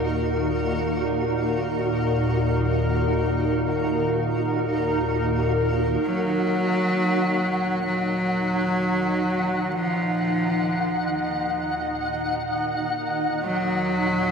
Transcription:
Already playing: D#2 A#2 D#4 F#4 A#4 F5
6.01 D#2 A#2 F#3 D#4 F#5
6.75 F#5
7.86 F#3
9.29 D#5
9.71 F3
13.43 F#3

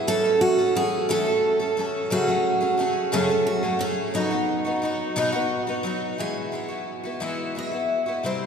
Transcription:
0.07 E3 A3 C#4 A4
0.24 A3 C#4 A4
0.41 F#4
0.59 A3 C#4 A4
0.75 E3 A3 C#4 G#4
1.09 E3 A3 C#4 A4
1.26 A3 C#4 A4
1.60 A3 C#4 A4
1.77 E3 A3 C#4 A4
2.10 F#2 C#3 F#3 A3 C#4 F#4 G#4
2.27 F#3 A3 C#4 G#4
2.61 F#3 A3 C#4 G#4
2.77 F#3 A3 C#4 G#4
3.12 F#2 C#3 F#3 A3 C#4 G#4 A4
3.29 F#3 A3 C#4 G#4
3.47 F#4
3.63 F#3 A3 C#4 G#4
3.79 F#3 A3 C#4 G#4
4.14 B2 F#3 B3 D#4 F#4
4.31 B3 D#4 F#4
4.65 B3 D#4 F#4
4.82 F#3 B3 D#4 F#4
5.16 B2 F#3 B3 D#4 F#4
5.32 B3 D#4 F#4
5.67 B3 D#4 F#4
5.83 F#3 B3 D#4 F#4
6.18 E3 G#3 B3 E4 F#4 G#5
6.52 G#3 B3 E4 F#4
6.68 B3 E4 F#4
7.04 B3 E4 F#4
7.20 E3 G#3 B3 E4 F#4
7.55 G#3 B3 E4 F#4 E5
7.71 B3 E4 F#4
8.06 B3 E4 F#4 D#5
8.23 C3 E3 G3 C4 E4 C5

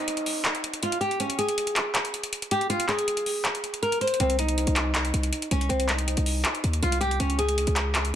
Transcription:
Already playing: D#4, downlifter
0.08 closed hi-hat
0.17 closed hi-hat
0.26 open hi-hat
0.45 clap, closed hi-hat
0.55 closed hi-hat
0.64 closed hi-hat
0.74 closed hi-hat
0.83 F4, closed hi-hat
0.92 closed hi-hat
1.01 G4, closed hi-hat
1.11 closed hi-hat
1.20 C#4, closed hi-hat
1.30 closed hi-hat
1.38 G#4, closed hi-hat
1.49 closed hi-hat
1.58 closed hi-hat
1.67 closed hi-hat
1.76 clap, closed hi-hat
1.95 clap, closed hi-hat
2.05 closed hi-hat
2.14 closed hi-hat
2.23 closed hi-hat
2.33 closed hi-hat
2.42 closed hi-hat
2.51 G4, closed hi-hat
2.61 closed hi-hat
2.70 F4, closed hi-hat
2.80 closed hi-hat
2.89 G#4, clap, closed hi-hat
2.99 closed hi-hat
3.08 closed hi-hat
3.17 closed hi-hat
3.26 open hi-hat
3.45 clap, closed hi-hat
3.55 closed hi-hat
3.64 closed hi-hat
3.74 closed hi-hat
3.83 A#4, closed hi-hat
3.92 closed hi-hat
4.01 C5, closed hi-hat
4.07 closed hi-hat
4.14 closed hi-hat
4.20 C2 C4, closed hi-hat
4.30 closed hi-hat
4.39 D#4, closed hi-hat
4.49 closed hi-hat
4.58 closed hi-hat
4.67 C2, closed hi-hat
4.76 clap, closed hi-hat
4.95 clap, closed hi-hat
5.05 closed hi-hat
5.14 C2, closed hi-hat
5.23 closed hi-hat
5.33 closed hi-hat
5.42 closed hi-hat
5.51 C2 C#4, closed hi-hat
5.61 closed hi-hat
5.69 C2 C4, closed hi-hat
5.80 closed hi-hat
5.89 D#4, clap, closed hi-hat
5.99 closed hi-hat
6.08 closed hi-hat
6.17 C2, closed hi-hat
6.26 open hi-hat
6.45 clap, closed hi-hat
6.55 closed hi-hat
6.64 D#2, closed hi-hat
6.73 closed hi-hat
6.83 C2 F4, closed hi-hat
6.92 closed hi-hat
7.01 G4, closed hi-hat
7.11 closed hi-hat
7.20 C#2 C#4, closed hi-hat
7.30 closed hi-hat
7.39 G#4, closed hi-hat
7.49 closed hi-hat
7.58 closed hi-hat
7.67 C#2, closed hi-hat
7.76 clap, closed hi-hat
7.95 clap, closed hi-hat
8.05 closed hi-hat

